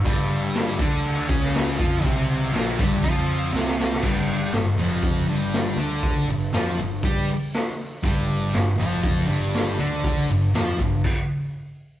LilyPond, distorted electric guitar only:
\new Staff \with { instrumentName = "Distorted electric guitar" } { \clef bass \time 4/4 \key g \minor \tempo 4 = 120 <g, g>4. <d d'>4 <cis cis'>4 <f f'>8 | <c c'>4 <bes, bes>8 <g, g>8 <f f'>4 <c c'>4 | <g, g>4 g,8 <f, f>4 <g, g>4 <d d'>8~ | <d d'>8 g,8 <f f'>8 g,8 <g g'>8 r4. |
<g, g>4 g,8 <f, f>4 <g, g>4 <d d'>8~ | <d d'>8 g,8 <f f'>8 g,8 r2 | }